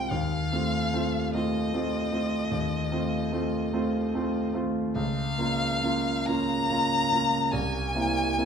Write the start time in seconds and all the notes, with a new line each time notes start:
Already playing: G#3 C4 F4 G5
0.11 D#2 F5
0.52 A3 C4 F4
0.93 A3 C4 F4
1.34 A3 C4 F4 D#5
1.74 A3 C4 F4
2.12 A3 C4 F4
2.51 D#2
2.92 A3 C4 F4
3.32 A3 C4 F4
3.73 A3 C4 F4
4.14 A3 C4 F4
4.54 A3 C4 F4
4.95 C#2 F5
5.38 A#3 C#4 F4
5.83 A#3 C#4 F4
6.27 A#3 C#4 F4 A#5
6.70 A#3 C#4 F4
7.12 A#3 C#4 F4
7.52 C2 G#5
7.95 A#3 C4 E4
8.38 A#3 C4 E4